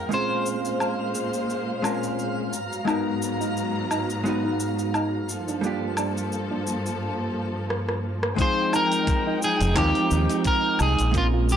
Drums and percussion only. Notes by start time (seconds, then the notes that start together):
0.12 cabasa
0.46 cabasa
0.65 cabasa
0.80 cabasa, low woodblock
1.15 cabasa
1.34 cabasa
1.50 cabasa
1.84 cabasa, low woodblock
2.03 cabasa
2.19 cabasa
2.53 cabasa
2.73 cabasa
2.88 cabasa, low woodblock
3.22 cabasa
3.41 cabasa
3.57 cabasa
3.91 cabasa, low woodblock
4.10 cabasa
4.26 cabasa
4.60 cabasa
4.79 cabasa
4.94 cabasa, low woodblock
5.29 cabasa
5.48 cabasa
5.64 cabasa
5.97 cabasa, low woodblock
6.17 cabasa
6.32 cabasa
6.67 cabasa
6.86 cabasa
7.70 cross-stick
7.89 cross-stick
8.23 cross-stick
8.38 kick, open hi-hat, cabasa
8.73 cabasa, low woodblock
8.92 open hi-hat, cabasa
9.07 kick, open hi-hat, cabasa
9.42 cabasa
9.61 open hi-hat, cabasa
9.76 kick, clap, open hi-hat, cabasa, low woodblock
9.95 open hi-hat
10.11 cabasa
10.30 open hi-hat, cabasa
10.44 kick, open hi-hat, cabasa
10.79 cabasa, low woodblock
10.99 open hi-hat, cabasa
11.14 kick, open hi-hat, cabasa
11.49 cabasa